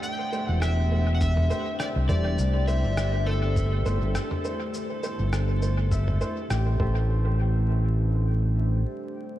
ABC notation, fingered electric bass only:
X:1
M:4/4
L:1/16
Q:"Swing 16ths" 1/4=102
K:Am
V:1 name="Fingered electric bass" clef=bass
z3 E,,,6- E,,, z3 C,, E,,,2 | C,,3 G,,,6- G,,, G,,, G,,, z4 | z3 G,,,6- G,,, z2 A,,,2 A,,,2- | A,,,12 z4 |]